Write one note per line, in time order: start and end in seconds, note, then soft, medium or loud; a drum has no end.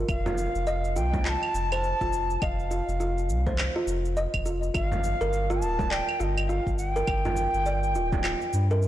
0.08 0.48 F1 medium
0.08 0.97 F5 loud
0.08 kick loud
0.08 cabasa soft
0.08 claves medium
0.26 0.37 F4 medium
0.26 frame drum medium
0.26 cabasa soft
0.38 cabasa medium
0.55 0.97 F1 medium
0.55 cabasa soft
0.67 0.84 D#5 medium
0.67 cabasa soft
0.84 cabasa soft
0.96 1.36 C2 medium
0.96 1.24 F4 medium
0.96 1.27 G5 loud
0.96 cabasa medium
1.14 kick loud
1.14 frame drum medium
1.14 cabasa soft
1.25 1.70 F4 medium
1.25 2.43 A5 loud
1.25 1.30 C6 loud
1.25 clap medium
1.25 cabasa soft
1.43 claves medium
1.54 1.94 F1 medium
1.54 cabasa medium
1.72 1.83 C5 loud
1.72 cabasa soft
1.72 claves medium
1.84 cabasa soft
2.01 2.37 F1 loud
2.01 2.12 F4 medium
2.01 kick medium
2.01 cabasa soft
2.13 cabasa medium
2.30 cabasa soft
2.42 2.81 F1 medium
2.42 2.58 D#5 medium
2.42 3.58 F5 medium
2.42 kick loud
2.42 cabasa soft
2.42 claves medium
2.60 cabasa soft
2.71 2.99 F4 medium
2.71 cabasa medium
2.88 3.30 F1 medium
2.88 cabasa soft
3.00 3.45 F4 medium
3.00 cabasa soft
3.18 cabasa soft
3.29 3.69 C2 medium
3.29 cabasa medium
3.46 3.58 C5 medium
3.46 kick loud
3.46 frame drum medium
3.46 cabasa soft
3.58 clap medium
3.58 cabasa soft
3.58 claves medium
3.76 3.87 F4 loud
3.87 4.27 F1 medium
3.87 cabasa medium
4.05 cabasa soft
4.17 4.33 D#5 medium
4.17 cabasa soft
4.34 4.70 F1 loud
4.34 kick medium
4.34 cabasa soft
4.34 claves medium
4.46 4.73 F4 medium
4.46 cabasa medium
4.63 cabasa soft
4.74 5.14 G1 loud
4.74 5.19 F4 medium
4.74 5.63 F5 loud
4.74 kick loud
4.74 cabasa soft
4.74 claves medium
4.92 frame drum medium
4.92 cabasa soft
5.04 cabasa medium
5.21 5.63 G1 medium
5.21 5.32 A#4 loud
5.21 cabasa soft
5.33 cabasa soft
5.50 5.61 F4 loud
5.50 cabasa soft
5.61 6.02 D1 medium
5.61 5.92 A5 loud
5.61 cabasa medium
5.79 kick loud
5.79 frame drum medium
5.79 cabasa soft
5.90 6.08 D5 medium
5.90 6.21 G5 loud
5.90 clap medium
5.90 cabasa soft
6.09 claves medium
6.19 6.60 G1 loud
6.19 6.48 F4 medium
6.19 6.50 D#5 medium
6.19 6.24 F5 medium
6.19 cabasa medium
6.38 cabasa soft
6.38 claves medium
6.48 6.94 F4 medium
6.48 6.77 F5 loud
6.48 cabasa soft
6.67 7.03 G1 medium
6.67 kick medium
6.67 cabasa soft
6.77 6.89 F#5 loud
6.77 cabasa medium
6.89 8.78 G5 loud
6.96 7.07 A#4 loud
6.96 cabasa soft
7.07 7.47 G1 medium
7.07 kick loud
7.07 cabasa soft
7.07 claves medium
7.25 7.36 F4 medium
7.25 frame drum medium
7.25 cabasa soft
7.37 cabasa medium
7.54 7.96 G1 medium
7.54 cabasa soft
7.66 7.83 D5 medium
7.66 cabasa soft
7.83 cabasa soft
7.95 8.35 D1 medium
7.95 8.23 F4 medium
7.95 cabasa medium
8.12 kick loud
8.12 frame drum medium
8.12 cabasa soft
8.24 8.69 F4 medium
8.24 clap medium
8.24 cabasa soft
8.24 claves medium
8.42 cabasa soft
8.53 8.88 G2 medium
8.53 cabasa medium
8.71 8.82 A#4 loud
8.71 cabasa soft
8.82 cabasa soft